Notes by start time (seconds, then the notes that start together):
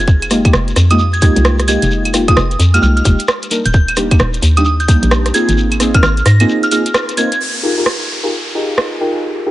Already playing: F1 G#6
0.07 kick, shekere
0.22 closed hi-hat, claves, shekere
0.30 G#3 A#3 D#4 F4 G4, cross-stick, open hi-hat, shekere
0.45 G#3 A#3 D#4 F4 G4, kick, closed hi-hat, claves, shekere
0.53 F1, cross-stick, shekere
0.68 closed hi-hat, shekere
0.76 F2, cross-stick, open hi-hat, shekere
0.90 G#3 A#3 D#4 F4 G4 D#6, closed hi-hat, claves, shekere
0.99 D#6, shekere
1.13 G#6, closed hi-hat, shekere
1.22 G#3 A#3 D#4 F4 G4 G#6, kick, open hi-hat, shekere
1.36 C2, closed hi-hat, shekere
1.45 cross-stick, shekere
1.59 cross-stick, closed hi-hat, shekere
1.68 G#3 A#3 D#4 F4 G4 G#6, open hi-hat, shekere
1.82 F1, closed hi-hat, shekere
1.91 shekere
2.05 closed hi-hat, claves, shekere
2.14 G#3 A#3 D#4 F4 G4, cross-stick, open hi-hat, shekere
2.28 G#3 A#3 D#4 F4 G#4 D#6, kick, closed hi-hat, claves, shekere
2.36 F1 D#6, cross-stick, shekere
2.51 closed hi-hat, shekere
2.59 F2, open hi-hat, shekere
2.74 G#3 A#3 D#4 F4 G4 F6, closed hi-hat, claves, shekere
2.82 C2 F6, shekere
2.97 F6, closed hi-hat, shekere
3.05 F1 G#3 A#3 D#4 F4 G4, kick, open hi-hat, shekere
3.19 closed hi-hat, shekere
3.28 cross-stick, shekere
3.43 closed hi-hat, shekere
3.51 G3 A#3 D4 D#4 A#4, open hi-hat, shekere
3.64 D#1 G6, closed hi-hat, shekere
3.73 G6, kick, shekere
3.88 closed hi-hat, claves, shekere
3.96 G3 A#3 D4 D#4 G4, cross-stick, open hi-hat, shekere
4.11 G3 A#3 D4 D#4 G4, kick, closed hi-hat, claves, shekere
4.19 D#1, cross-stick, shekere
4.33 closed hi-hat, shekere
4.42 D#2, open hi-hat, shekere
4.57 G3 A#3 D4 D#4 G4 D#6, closed hi-hat, claves, shekere
4.65 D#6, shekere
4.80 G6, closed hi-hat, shekere
4.88 G3 A#3 D4 D#4 G4 G6, kick, open hi-hat, shekere
5.03 A#1, closed hi-hat, shekere
5.11 cross-stick, shekere
5.25 cross-stick, closed hi-hat, shekere
5.34 A#3 C4 D#4 F4 G#4 G#6, open hi-hat, shekere
5.49 G#1, closed hi-hat, shekere
5.57 shekere
5.71 closed hi-hat, claves, shekere
5.80 A#3 C4 D#4 F4 G#4, cross-stick, open hi-hat, shekere
5.94 A#3 C4 D#4 F4 A#4 F6, kick, closed hi-hat, claves, shekere
6.03 G#1 F6, cross-stick, shekere
6.17 closed hi-hat, shekere
6.26 G#2 A#6, cross-stick, open hi-hat, shekere
6.40 A#3 C4 D#4 F4 G#4 A#6, closed hi-hat, claves, shekere
6.49 shekere
6.63 F6, closed hi-hat, shekere
6.71 A#3 C4 D#4 F4 G#4 F6, open hi-hat, shekere
6.86 closed hi-hat, shekere
6.94 cross-stick, shekere
7.09 closed hi-hat, shekere
7.17 A#3 C4 D#4 F4 A#4 G#6, open hi-hat, shekere
7.32 closed hi-hat, shekere
7.40 downlifter
7.63 D#4 F4 G4 G#4 A#4
7.77 D#4 F4 G4 G#4 A#4
7.86 cross-stick
8.23 D#4 F4 G4 G#4 A#4
8.55 D#4 F4 G4 G#4 A#4
8.78 cross-stick
9.01 D#4 F4 G4 G#4 A#4
9.46 D#4 F4 G4 G#4 A#4